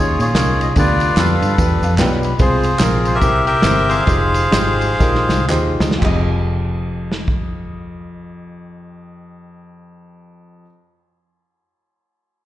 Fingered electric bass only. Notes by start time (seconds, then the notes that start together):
Already playing: D#2
0.19 A#2
0.34 C2
0.76 D2
1.17 F2
1.41 G2
1.58 E2
1.82 F2
1.98 B1
2.40 C2
2.80 A#1
3.21 C2
3.63 G1
4.07 F1
4.53 G#1
5.00 A#1
5.30 C2
5.49 D#2
5.80 C#2
6.02 F1